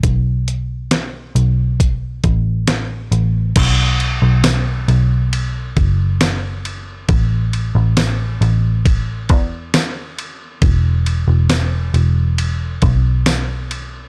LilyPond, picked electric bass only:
\new Staff \with { instrumentName = "Picked electric bass" } { \clef bass \time 4/4 \key a \major \tempo 4 = 68 b,,4. b,,4 a,,4 a,,8 | b,,8. b,,8. b,,4 fis,,4. | a,,8. a,,8. a,,4 e,4. | e,,8. e,,8. e,,4 b,,4. | }